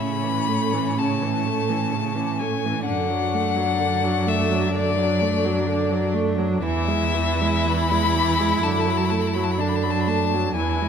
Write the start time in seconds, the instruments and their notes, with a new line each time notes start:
Already playing: cello A2, viola C#3, violin C#4 B5
0.23 viola E3
0.48 viola A3
0.72 viola E3
0.98 viola C#3, violin A5
1.23 viola E3
1.46 viola A3
1.69 viola E3
1.92 viola C#3
2.15 viola E3
2.39 viola A3, violin G#5
2.65 viola E3
2.85 cello F#2, viola D3, violin D4 F#5
3.10 viola F#3
3.34 viola A3
3.56 viola F#3
3.80 viola D3
4.04 viola F#3
4.26 viola A3, violin E5
4.51 viola F#3
4.73 viola D3, violin D5
4.97 viola F#3
5.21 viola A3
5.45 viola F#3
5.67 viola D3
5.91 viola F#3
6.14 viola A3
6.38 viola F#3
6.62 cello E2, viola E3, violin E4 E5
6.87 viola G#3
7.14 viola E3
7.41 viola G#3
7.67 viola E3, violin B5
7.92 viola G#3
8.15 viola E3
8.40 viola G#3
8.63 cello F#2, viola D3, violin A5
8.71 violin B5
8.80 violin A5
8.86 viola F#3, violin B5
8.97 violin A5
9.05 violin B5
9.10 viola A3, violin A5
9.21 violin B5
9.27 violin A5
9.34 viola F#3, violin B5
9.44 violin A5
9.51 violin B5
9.58 viola D3, violin D4 A5
9.68 violin B5
9.75 violin A5
9.82 viola F#3, violin B5
9.90 violin A5
10.00 violin B5
10.07 viola A3, violin A5
10.33 viola F#3
10.57 cello E2, viola E3, violin E4 G#5
10.82 viola G#3